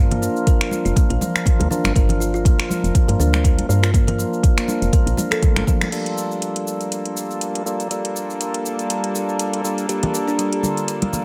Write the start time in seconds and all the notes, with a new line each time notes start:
Already playing: G2 F3 A#3 D4 F4 A#4
0.11 A#3, closed hi-hat, low conga
0.22 D4, shaker
0.36 shaker
0.47 A#4, kick, closed hi-hat, shaker
0.61 finger snap, closed hi-hat
0.71 F4, high conga, shaker
0.85 F1 F4, closed hi-hat, shaker
0.96 A#3, kick, closed hi-hat, high conga, shaker
1.10 A#1 A#4, closed hi-hat
1.21 F3, high conga, low conga, shaker
1.36 finger snap, shaker
1.46 kick, closed hi-hat, low conga, shaker
1.59 D2 A#3, closed hi-hat, high conga
1.71 F3 A#3 D4 F4 A#4, low conga, shaker
1.84 G1, finger snap, closed hi-hat, high conga, shaker
1.96 G1 F3 A#3 D4 F4 A#4, kick, closed hi-hat, shaker
2.09 closed hi-hat, low conga
2.20 F4, shaker
2.34 F4, shaker
2.45 A#3, kick, closed hi-hat, shaker
2.59 A#4, finger snap, closed hi-hat
2.70 F3, high conga, shaker
2.83 F1, closed hi-hat, shaker
2.95 kick, closed hi-hat, shaker
3.08 G2 A#3, closed hi-hat, high conga
3.19 D2 D4, low conga, shaker
3.33 finger snap, high conga, shaker
3.44 A#4, kick, closed hi-hat, high conga, shaker
3.58 closed hi-hat, high conga
3.69 G2 F3 A#3 D4 F4 A#4, shaker
3.83 F4, finger snap, closed hi-hat, shaker
3.94 F3 A#3 D4 F4 A#4, kick, closed hi-hat, shaker
4.07 A#4, closed hi-hat, low conga
4.19 F3, shaker
4.33 shaker
4.43 kick, closed hi-hat, shaker
4.57 A#3, finger snap, closed hi-hat, shaker
4.68 D4, high conga, shaker
4.82 F1, closed hi-hat, shaker
4.93 A#4, kick, closed hi-hat, high conga, shaker
5.06 A#1, closed hi-hat, shaker
5.17 D4, high conga, low conga, shaker
5.31 A4, finger snap, closed hi-hat, shaker
5.42 A3, kick, closed hi-hat, low conga, shaker
5.56 G1 A#3, finger snap, closed hi-hat, high conga
5.67 F3 A#3 D4 F4 A#4, kick, low conga, shaker
5.81 finger snap, closed hi-hat, high conga, shaker
5.92 G3 A#3 D4 F4 A4, closed hi-hat, crash, shaker
6.06 closed hi-hat
6.18 shaker
6.31 shaker
6.42 closed hi-hat, shaker
6.56 closed hi-hat
6.67 shaker
6.81 closed hi-hat, shaker
6.92 closed hi-hat, shaker
7.05 closed hi-hat
7.17 shaker
7.31 shaker
7.41 closed hi-hat, shaker
7.55 closed hi-hat
7.66 G3 A#3 D4 F4 A4, shaker
7.80 closed hi-hat, shaker
7.90 G3 A#3 D4 F4 A4, closed hi-hat, shaker
8.05 closed hi-hat
8.16 shaker
8.30 shaker
8.41 closed hi-hat, shaker
8.54 closed hi-hat
8.66 shaker
8.79 closed hi-hat, shaker
8.90 closed hi-hat, shaker
9.04 closed hi-hat
9.15 shaker
9.29 shaker
9.39 closed hi-hat, shaker
9.53 closed hi-hat
9.64 G3 A#3 D4 F4 A4, shaker
9.78 closed hi-hat, shaker
9.89 G3 A#3 D4 F4 G4 A4, closed hi-hat, shaker
10.03 closed hi-hat, low conga
10.14 D4, shaker
10.28 D4, shaker
10.39 G3, closed hi-hat, shaker
10.53 G4, closed hi-hat
10.63 D3, high conga, shaker
10.77 closed hi-hat, shaker
10.88 closed hi-hat, shaker
11.02 G3, closed hi-hat, high conga
11.13 A#3, low conga, shaker